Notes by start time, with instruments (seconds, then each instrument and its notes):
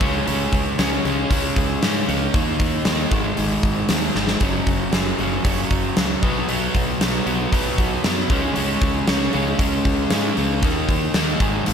0.01 fingered electric bass C#2, overdriven electric guitar C#3 G#3 C#4, kick, open hi-hat
0.26 fingered electric bass C#2, overdriven electric guitar C#3 G#3 C#4, open hi-hat
0.53 fingered electric bass C#2, kick, open hi-hat
0.78 fingered electric bass C#2, overdriven electric guitar C#3 G#3 C#4, snare, open hi-hat
1.05 fingered electric bass C#2, overdriven electric guitar C#3 G#3 C#4, open hi-hat
1.30 fingered electric bass C#2, overdriven electric guitar C#3 G#3 C#4, kick, open hi-hat
1.56 fingered electric bass C#2, kick, open hi-hat
1.82 fingered electric bass G#2, overdriven electric guitar C#3 G#3 C#4, snare, open hi-hat
2.08 fingered electric bass C#2, overdriven electric guitar C#3 G#3 C#4, open hi-hat
2.34 fingered electric bass D#2, overdriven electric guitar D#3 A#3 D#4, kick, open hi-hat
2.60 fingered electric bass D#2, kick, open hi-hat
2.85 fingered electric bass D#2, overdriven electric guitar D#3 A#3 D#4, snare, open hi-hat
3.11 fingered electric bass G#1, overdriven electric guitar G#2 D#3 G#3, kick, open hi-hat
3.37 fingered electric bass G#1, overdriven electric guitar G#2 D#3 G#3, open hi-hat
3.63 fingered electric bass G#1, kick, open hi-hat
3.89 fingered electric bass D#2, overdriven electric guitar G#2 D#3 G#3, snare, open hi-hat
4.15 fingered electric bass G#1, overdriven electric guitar G#2 D#3 G#3, snare
4.27 snare
4.40 fingered electric bass F#1, overdriven electric guitar F#2 C#3 F#3, kick, open hi-hat
4.67 fingered electric bass F#1, kick, open hi-hat
4.92 fingered electric bass F#1, overdriven electric guitar F#2 C#3 F#3, snare, open hi-hat
5.19 fingered electric bass F#1, overdriven electric guitar F#2 C#3 F#3, open hi-hat
5.44 fingered electric bass F#1, overdriven electric guitar F#2 C#3 F#3, kick, open hi-hat
5.70 fingered electric bass F#1, kick, open hi-hat
5.97 fingered electric bass C#2, overdriven electric guitar F#2 C#3 F#3, snare, open hi-hat
6.22 fingered electric bass B1, overdriven electric guitar B2 F#3 B3, kick, open hi-hat
6.48 fingered electric bass B1, overdriven electric guitar B2 F#3 B3, open hi-hat
6.74 fingered electric bass B1, kick, open hi-hat
7.00 fingered electric bass B1, overdriven electric guitar B2 F#3 B3, snare, open hi-hat
7.26 fingered electric bass B1, overdriven electric guitar B2 F#3 B3, open hi-hat
7.52 fingered electric bass B1, overdriven electric guitar B2 F#3 B3, kick, open hi-hat
7.78 fingered electric bass B1, kick, open hi-hat
8.04 fingered electric bass F#2, overdriven electric guitar B2 F#3 B3, snare, open hi-hat
8.30 fingered electric bass C#2, overdriven electric guitar C#3 G#3 C#4, kick, open hi-hat
8.56 fingered electric bass C#2, overdriven electric guitar C#3 G#3 C#4, open hi-hat
8.81 fingered electric bass C#2, kick, open hi-hat
9.07 fingered electric bass C#2, overdriven electric guitar C#3 G#3 C#4, snare, open hi-hat
9.33 fingered electric bass C#2, overdriven electric guitar C#3 G#3 C#4, open hi-hat
9.59 fingered electric bass C#2, overdriven electric guitar C#3 G#3 C#4, kick, open hi-hat
9.85 fingered electric bass C#2, kick, open hi-hat
10.10 fingered electric bass G#2, overdriven electric guitar C#3 G#3 C#4, snare, open hi-hat
10.37 fingered electric bass C#2, overdriven electric guitar C#3 G#3 C#4, open hi-hat
10.63 fingered electric bass D#2, overdriven electric guitar D#3 A#3 D#4, kick, open hi-hat
10.88 fingered electric bass D#2, kick, open hi-hat
11.14 fingered electric bass D#2, overdriven electric guitar D#3 A#3 D#4, snare, open hi-hat
11.40 fingered electric bass G#1, overdriven electric guitar G#2 D#3 G#3, kick, open hi-hat
11.66 fingered electric bass G#1, overdriven electric guitar G#2 D#3 G#3, open hi-hat